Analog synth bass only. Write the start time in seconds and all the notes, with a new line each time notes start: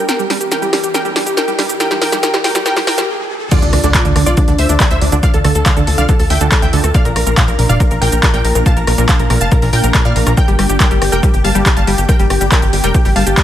3.62 D2
3.73 D2
3.84 D2
4.05 D2
4.16 D2
4.27 C2
4.48 D2
4.59 D2
4.70 D2
4.91 D2
5.02 D2
5.12 D2
5.34 D2
5.44 D2
5.55 D2
5.77 D2
5.88 D2
5.98 C2
6.19 D2
6.30 D2
6.41 D2
6.62 D2
6.73 D2
6.84 D2
7.05 A#1
7.16 A#1
7.27 A#1
7.48 A#1
7.59 A#1
7.70 F1
7.91 A#1
8.02 A#1
8.13 A#1
8.34 A#1
8.45 A#1
8.55 A#1
8.77 A#1
8.87 A#1
8.98 A#1
9.20 A#1
9.30 A#1
9.41 F1
9.62 A#1
9.73 A#2
9.84 A#1
10.05 A#2
10.16 A#1
10.27 A#1
10.48 G1
10.59 G1
10.70 G1
10.91 G1
11.02 G1
11.12 F1
11.34 G1
11.44 G1
11.55 G1
11.77 G1
11.87 G1
11.98 G1
12.20 G1
12.30 G1
12.41 G1
12.62 G1
12.73 G1
12.84 F1
13.05 G1
13.16 G1
13.27 G1